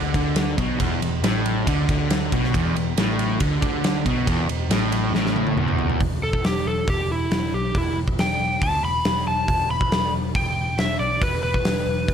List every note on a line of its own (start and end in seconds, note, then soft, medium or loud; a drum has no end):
0.00 0.13 D2 loud
0.00 0.14 D3 loud
0.14 0.55 D2 medium
0.14 0.57 D3 medium
0.14 kick loud
0.14 ride medium
0.36 snare loud
0.36 ride loud
0.57 0.78 B1 medium
0.57 0.78 B2 loud
0.57 kick loud
0.57 ride medium
0.79 1.00 E1 medium
0.79 1.00 E2 loud
0.79 kick loud
0.79 ride medium
1.01 1.21 E1 medium
1.01 1.19 E2 medium
1.01 ride medium
1.22 1.63 A1 medium
1.22 1.66 A2 medium
1.22 snare loud
1.22 ride medium
1.46 ride medium
1.67 1.87 D2 loud
1.67 1.88 D3 loud
1.67 kick loud
1.67 ride loud
1.89 2.29 D2 medium
1.89 2.32 D3 loud
1.89 kick loud
1.89 ride medium
2.10 snare loud
2.10 ride medium
2.32 2.52 B1 medium
2.32 2.54 B2 medium
2.32 kick medium
2.32 ride medium
2.44 snare soft
2.54 2.74 E1 medium
2.54 2.75 E2 loud
2.54 kick loud
2.54 ride medium
2.75 2.95 E1 medium
2.75 2.94 E2 medium
2.75 ride medium
2.97 3.37 A1 medium
2.97 3.40 A2 medium
2.97 snare loud
2.97 ride medium
3.19 ride medium
3.40 3.61 D2 loud
3.40 3.61 D3 loud
3.40 kick loud
3.40 ride medium
3.62 4.02 D2 medium
3.62 4.05 D3 loud
3.62 kick loud
3.62 ride medium
3.84 snare loud
3.84 ride medium
4.06 4.26 B1 medium
4.06 4.27 B2 loud
4.06 kick medium
4.06 ride medium
4.27 4.47 E1 medium
4.27 4.48 E2 loud
4.27 kick loud
4.27 ride medium
4.48 4.68 E1 medium
4.48 4.67 E2 medium
4.48 ride medium
4.69 5.10 A1 medium
4.69 5.13 A2 medium
4.69 snare loud
4.69 ride loud
4.92 ride medium
5.12 5.54 A1 medium
5.12 5.57 A2 loud
5.12 snare medium
5.26 snare medium
5.36 high tom medium
5.47 high tom medium
5.57 5.97 E1 medium
5.57 6.00 E2 medium
5.57 mid tom medium
5.68 mid tom medium
5.79 floor tom medium
5.90 floor tom medium
6.00 6.19 E1 medium
6.00 kick loud
6.00 open hi-hat soft
6.22 6.41 E1 medium
6.22 6.44 A4 medium
6.33 kick medium
6.44 6.62 E1 medium
6.44 6.66 G4 medium
6.44 snare loud
6.44 open hi-hat medium
6.66 6.84 E1 medium
6.66 6.87 A4 medium
6.88 7.06 E1 medium
6.88 7.10 G4 medium
6.88 kick loud
6.88 open hi-hat medium
7.08 7.27 E1 medium
7.08 7.53 E4 medium
7.30 7.49 E1 medium
7.30 snare loud
7.30 open hi-hat soft
7.52 7.71 B1 medium
7.52 7.75 G4 medium
7.75 7.93 E1 medium
7.75 7.97 E4 medium
7.75 kick loud
7.75 open hi-hat medium
7.96 8.15 E1 medium
8.08 kick medium
8.18 8.37 E1 medium
8.18 8.61 G5 medium
8.18 snare loud
8.18 open hi-hat medium
8.40 8.58 E1 medium
8.62 8.80 D2 medium
8.62 8.84 A5 medium
8.62 kick loud
8.62 open hi-hat medium
8.83 9.02 E1 medium
8.83 9.26 B5 medium
9.05 9.24 E1 medium
9.05 snare loud
9.05 open hi-hat medium
9.27 9.45 E1 medium
9.27 9.69 A5 loud
9.48 9.66 E1 medium
9.48 kick loud
9.48 open hi-hat medium
9.70 9.88 E1 medium
9.70 10.13 B5 loud
9.81 kick medium
9.92 10.10 E1 medium
9.92 snare loud
9.92 open hi-hat medium
10.14 10.32 E1 medium
10.35 10.53 E1 medium
10.35 10.78 G5 medium
10.35 kick loud
10.35 open hi-hat medium
10.56 10.75 E1 medium
10.78 10.96 E1 medium
10.78 10.99 E5 medium
10.78 snare loud
10.78 open hi-hat medium
11.00 11.18 B1 medium
11.00 11.21 D5 medium
11.21 11.40 E1 medium
11.21 11.42 B4 medium
11.21 kick loud
11.21 open hi-hat medium
11.43 11.61 E1 medium
11.43 12.14 B4 medium
11.54 kick medium
11.65 11.84 E1 medium
11.65 snare loud
11.65 open hi-hat medium
11.87 12.05 E1 medium
12.08 12.14 D2 medium
12.08 kick loud
12.08 open hi-hat medium